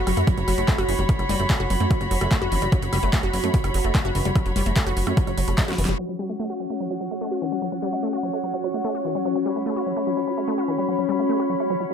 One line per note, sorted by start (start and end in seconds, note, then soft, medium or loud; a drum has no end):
0.00 5.98 F#4 medium
0.00 6.00 F#4 medium
0.00 5.99 C#5 medium
0.00 6.01 B5 medium
0.07 0.13 F#1 loud
0.07 0.11 F#3 medium
0.07 cross-stick medium
0.07 open hi-hat medium
0.17 0.23 F#2 loud
0.17 0.23 A3 medium
0.17 closed hi-hat soft
0.27 0.31 F#3 medium
0.27 kick loud
0.27 closed hi-hat medium
0.38 0.43 F#1 medium
0.38 0.41 F#3 medium
0.38 closed hi-hat medium
0.48 0.53 F#1 loud
0.48 0.54 F#3 medium
0.48 cross-stick soft
0.48 open hi-hat loud
0.58 0.64 F#1 loud
0.58 0.60 A3 medium
0.58 closed hi-hat soft
0.68 0.72 A3 loud
0.68 kick loud
0.68 clap loud
0.68 closed hi-hat medium
0.78 0.84 F#1 medium
0.78 0.81 F#4 loud
0.78 cross-stick medium
0.78 closed hi-hat medium
0.89 0.94 F#1 loud
0.89 0.92 E3 medium
0.89 open hi-hat medium
0.99 1.05 F#1 loud
0.99 1.01 G3 medium
0.99 closed hi-hat medium
1.09 1.13 F#3 medium
1.09 kick loud
1.09 closed hi-hat medium
1.19 1.25 F#1 medium
1.19 1.25 F#3 medium
1.19 cross-stick soft
1.19 closed hi-hat medium
1.29 1.35 F#1 loud
1.29 1.32 G3 loud
1.29 open hi-hat loud
1.40 1.45 F#1 loud
1.40 1.42 A3 medium
1.40 closed hi-hat medium
1.50 1.54 A3 loud
1.50 kick loud
1.50 cross-stick medium
1.50 clap loud
1.50 closed hi-hat medium
1.60 1.66 F#1 medium
1.60 1.62 F#4 loud
1.60 closed hi-hat medium
1.70 1.76 F#1 loud
1.70 1.74 F#3 medium
1.70 open hi-hat medium
1.80 1.86 F#2 medium
1.80 1.86 A3 medium
1.80 closed hi-hat medium
1.91 1.94 F#3 medium
1.91 kick loud
1.91 cross-stick soft
1.91 closed hi-hat medium
2.01 2.07 F#1 medium
2.01 2.05 F#3 medium
2.01 closed hi-hat medium
2.11 2.17 F#1 loud
2.11 2.17 F#3 medium
2.11 open hi-hat loud
2.21 2.27 F#1 medium
2.21 2.24 A3 medium
2.21 cross-stick medium
2.21 closed hi-hat medium
2.31 2.35 A3 loud
2.31 kick loud
2.31 clap loud
2.31 closed hi-hat medium
2.42 2.47 F#1 medium
2.42 2.44 F#4 loud
2.42 closed hi-hat medium
2.52 2.58 F#1 loud
2.52 2.56 E3 medium
2.52 open hi-hat medium
2.62 2.68 F#1 loud
2.62 2.64 G3 medium
2.62 cross-stick soft
2.62 closed hi-hat medium
2.72 2.76 F#3 medium
2.72 kick loud
2.72 closed hi-hat medium
2.82 2.88 F#1 medium
2.82 2.88 F#3 medium
2.82 closed hi-hat medium
2.93 2.98 F#1 loud
2.93 2.95 G3 loud
2.93 cross-stick medium
2.93 open hi-hat loud
3.03 3.09 F#1 medium
3.03 3.05 A3 medium
3.03 closed hi-hat medium
3.13 3.17 A3 loud
3.13 kick loud
3.13 clap loud
3.13 closed hi-hat medium
3.23 3.29 F#1 medium
3.23 3.26 F#4 loud
3.23 closed hi-hat medium
3.33 3.39 F#1 loud
3.33 3.37 F#3 medium
3.33 cross-stick soft
3.33 open hi-hat medium
3.44 3.49 F#2 medium
3.44 3.49 A3 medium
3.44 closed hi-hat medium
3.54 3.58 F#3 medium
3.54 kick loud
3.54 closed hi-hat medium
3.64 3.70 F#1 medium
3.64 3.68 F#3 medium
3.64 cross-stick medium
3.64 closed hi-hat medium
3.74 3.80 F#1 loud
3.74 3.80 F#3 medium
3.74 open hi-hat loud
3.84 3.90 F#1 loud
3.84 3.87 A3 medium
3.84 closed hi-hat medium
3.95 3.99 A3 loud
3.95 kick loud
3.95 clap loud
3.95 closed hi-hat medium
4.05 4.11 F#1 medium
4.05 4.07 F#4 loud
4.05 cross-stick soft
4.05 closed hi-hat medium
4.15 4.21 F#1 loud
4.15 4.19 E3 medium
4.15 open hi-hat medium
4.25 4.31 F#1 loud
4.25 4.28 G3 medium
4.25 closed hi-hat medium
4.35 4.39 F#3 medium
4.35 kick loud
4.35 cross-stick medium
4.35 closed hi-hat medium
4.46 4.51 F#1 medium
4.46 4.51 F#3 medium
4.46 closed hi-hat medium
4.56 4.62 F#1 loud
4.56 4.58 G3 loud
4.56 open hi-hat loud
4.66 4.72 F#1 loud
4.66 4.68 A3 medium
4.66 closed hi-hat medium
4.76 4.80 A3 loud
4.76 kick loud
4.76 cross-stick soft
4.76 clap loud
4.76 closed hi-hat medium
4.87 4.92 F#1 medium
4.87 4.89 F#4 loud
4.87 closed hi-hat medium
4.97 5.02 F#1 loud
4.97 5.01 F#3 medium
4.97 open hi-hat medium
5.07 5.13 F#2 medium
5.07 5.13 A3 medium
5.07 cross-stick medium
5.07 closed hi-hat medium
5.17 5.21 F#3 medium
5.17 kick loud
5.17 closed hi-hat medium
5.27 5.33 F#1 medium
5.27 5.31 F#3 medium
5.27 closed hi-hat medium
5.38 5.43 F#1 loud
5.38 5.43 F#3 medium
5.38 open hi-hat loud
5.48 5.53 F#1 medium
5.48 5.50 A3 medium
5.48 cross-stick soft
5.48 closed hi-hat medium
5.58 5.62 A3 loud
5.58 kick loud
5.58 snare medium
5.58 clap loud
5.58 closed hi-hat medium
5.68 5.74 F#2 medium
5.68 5.70 F#4 loud
5.68 snare medium
5.68 closed hi-hat medium
5.78 5.84 F#1 loud
5.78 5.82 E3 medium
5.78 open hi-hat medium
5.85 5.94 F#1 medium
5.85 5.91 G3 medium
5.85 snare loud
5.85 closed hi-hat medium
5.99 6.03 F#3 medium
5.99 11.94 C#4 medium
5.99 11.94 F#4 medium
5.99 downlifter medium
6.09 6.15 F#3 medium
6.19 6.22 G3 loud
6.19 9.51 F#5 medium
6.25 11.94 C#5 medium
6.29 6.32 A3 medium
6.40 6.43 A3 loud
6.50 6.52 F#4 loud
6.60 6.64 F#3 medium
6.70 6.76 A3 medium
6.80 6.84 F#3 medium
6.91 6.94 F#3 medium
7.01 7.07 F#3 medium
7.11 7.13 A3 medium
7.21 7.25 A3 loud
7.31 7.34 F#4 loud
7.42 7.45 E3 medium
7.52 7.54 G3 medium
7.62 7.66 F#3 medium
7.72 7.78 F#3 medium
7.82 7.85 G3 loud
7.93 7.95 A3 medium
8.03 8.07 A3 loud
8.13 8.15 F#4 loud
8.23 8.27 F#3 medium
8.33 8.39 A3 medium
8.44 8.47 F#3 medium
8.54 8.58 F#3 medium
8.64 8.70 F#3 medium
8.74 8.77 A3 medium
8.84 8.88 A3 loud
8.95 8.97 F#4 loud
9.05 9.09 E3 medium
9.15 9.17 G3 medium
9.25 9.29 F#3 medium
9.36 9.41 F#3 medium
9.46 9.48 G3 loud
9.46 11.94 B5 medium
9.56 9.58 A3 medium
9.66 9.70 A3 loud
9.76 9.79 F#4 loud
9.86 9.90 F#3 medium
9.97 10.02 A3 medium
10.07 10.11 F#3 medium
10.17 10.21 F#3 medium
10.27 10.33 F#3 medium
10.38 10.40 A3 medium
10.48 10.52 A3 loud
10.58 10.60 F#4 loud
10.68 10.72 E3 medium
10.78 10.81 G3 medium
10.89 10.92 F#3 medium
10.99 11.05 F#3 medium
11.09 11.11 G3 loud
11.19 11.21 A3 medium
11.29 11.33 A3 loud
11.40 11.42 F#4 loud
11.50 11.54 F#3 medium
11.60 11.66 A3 medium
11.70 11.74 F#3 medium
11.80 11.84 F#3 medium
11.91 11.93 F#3 medium